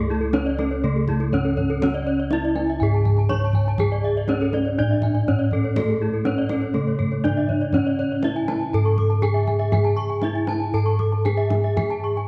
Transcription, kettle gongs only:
0.00 0.81 C#2 loud
0.00 1.28 A4 medium
0.33 0.41 D4 soft
0.84 2.27 C#3 medium
1.33 1.41 D4 soft
1.82 3.26 C#4 medium
2.32 2.40 D4 soft
2.81 4.25 G#2 medium
3.31 3.39 D4 soft
3.80 5.24 G#4 medium
4.29 4.37 D4 soft
4.80 6.23 A2 medium
5.29 5.37 D4 soft
5.78 7.21 A4 medium
6.26 6.34 D4 soft
6.75 8.19 C#3 medium
7.25 7.33 D4 soft
7.74 9.18 C#4 medium
8.24 8.32 D4 soft
8.74 10.18 G#2 medium
9.23 9.31 D4 soft
9.73 11.21 G#4 medium
10.23 10.31 D4 soft
10.73 12.27 G#2 medium
11.25 11.33 D4 soft
11.77 12.28 G#4 medium

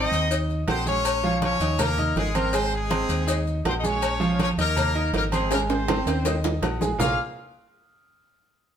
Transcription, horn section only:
0.00 0.38 D#4 medium
0.00 0.38 D#5 loud
0.68 0.85 C4 medium
0.68 0.85 C5 loud
0.87 1.38 C#4 medium
0.87 1.38 C#5 loud
1.42 1.77 C#4 medium
1.42 1.77 C#5 loud
1.80 2.14 A#3 medium
1.80 2.14 A#4 loud
2.18 2.36 G#3 medium
2.18 2.35 G#4 medium
2.36 2.54 A#3 medium
2.36 2.54 A#4 loud
2.54 2.73 C4 medium
2.54 2.72 C5 loud
2.73 3.43 G#3 medium
2.73 3.43 G#4 loud
3.67 3.72 C4 medium
3.67 3.72 C5 loud
3.78 3.84 D#4 medium
3.78 3.84 D#5 medium
3.84 4.40 C#4 medium
3.84 4.40 C#5 loud
4.41 4.49 C#4 medium
4.41 4.49 C#5 loud
4.59 5.11 A#3 medium
4.59 5.11 A#4 loud
5.15 5.23 A#3 medium
5.15 5.23 A#4 medium
5.33 5.50 G#3 medium
5.33 5.50 G#4 medium
5.52 5.60 A#3 medium
5.52 5.60 A#4 medium
5.69 6.40 C4 medium
5.69 6.40 C5 medium
7.01 7.18 F4 medium
7.01 7.18 F5 medium

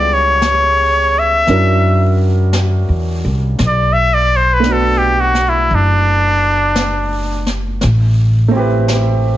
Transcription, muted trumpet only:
0.00 0.15 D5 medium
0.14 1.20 C#5 medium
1.19 2.21 E5 medium
3.67 3.94 D5 medium
3.93 4.15 E5 loud
4.14 4.38 D5 loud
4.36 4.55 C5 medium
4.54 4.74 B4 medium
4.72 4.99 A4 medium
4.98 5.22 G4 medium
5.20 5.51 F#4 medium
5.49 5.76 E4 medium
5.75 7.50 D4 medium

